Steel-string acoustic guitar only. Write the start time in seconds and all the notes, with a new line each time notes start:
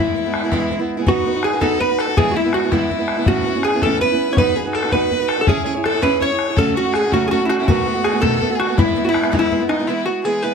Already playing: E3 G#3
0.00 B3 E4
0.16 E3 G#3 B3 E4
0.26 G#3 B3 E4
0.43 G#3 B3 E4
0.52 E3 G#3 B3 E4
0.71 E3 G#3 B3 E4
0.79 G#3 B3 E4
0.97 G#3 B3 E4
1.06 B3 D#4 F#4 B4
1.25 B3 D#4 F#4 B4
1.34 D#4 F#4 B4
1.53 D#4 F#4 B4
1.61 B3 D#4 F#4 B4
1.80 B3 D#4 F#4 B4
1.89 D#4 F#4 B4
2.07 D#4 F#4 B4
2.17 E3 G#3 B3 E4
2.36 E3 G#3 B3 E4
2.45 G#3 B3 E4
2.63 G#3 B3 E4
2.72 E3 G#3 B3 E4
2.90 E3 G#3 B3 E4
2.98 G#3 B3 E4
3.17 G#3 B3 E4
3.27 A2 E3 B3 C#4 E4
3.45 E3 B3 C#4 E4
3.55 B3 C#4 E4
3.73 B3 C#4 E4
3.83 A2 E3 B3 C#4 E4
4.02 E3 B3 C#4 E4
4.11 B3 C#4 E4
4.29 B3 C#4 E4
4.38 B3 D#4 F#4 B4
4.55 B3 D#4 F#4 B4
4.65 D#4 F#4 B4
4.83 D#4 F#4 B4
4.93 B3 D#4 F#4 B4
5.11 B3 D#4 F#4 B4
5.20 D#4 F#4 B4
5.37 D#4 F#4 B4
5.47 C#4 E4 G#4 C#5
5.65 C#4 E4 G#4 C#5
5.74 E4 G#4 C#5
5.92 E4 G#4 C#5
6.02 C#4 E4 G#4 C#5
6.20 C#4 E4 G#4 C#5
6.30 E4 G#4 C#5
6.48 E4 G#4 C#5
6.57 C#3 F#3 A3 C#4 F#4
6.76 F#3 A3 C#4 F#4
6.85 A3 C#4 F#4
7.04 A3 C#4 F#4
7.13 C#3 F#3 A3 C#4 F#4
7.31 F#3 A3 C#4 F#4
7.40 A3 C#4 F#4
7.59 A3 C#4 F#4
7.68 B2 D#3 A3 B3 F#4
7.85 D#3 A3 B3 F#4
7.94 A3 B3 F#4
8.13 A3 B3 F#4
8.22 B2 D#3 A3 B3 F#4
8.41 D#3 A3 B3 F#4
8.50 A3 B3 F#4
8.68 A3 B3 F#4
8.78 E3 G#3 B3 E4
8.96 E3 G#3 B3 E4
9.04 G#3 B3 E4
9.23 G#3 B3 E4
9.31 E3 G#3 B3 E4
9.50 E3 G#3 B3 E4
9.60 G#3 B3 E4
9.79 G#3 B3 E4
9.88 E3 G#3 B3 E4
10.05 G#3 B3 E4
10.24 E3 G#3 B3 E4
10.43 E3 G#3 B3 E4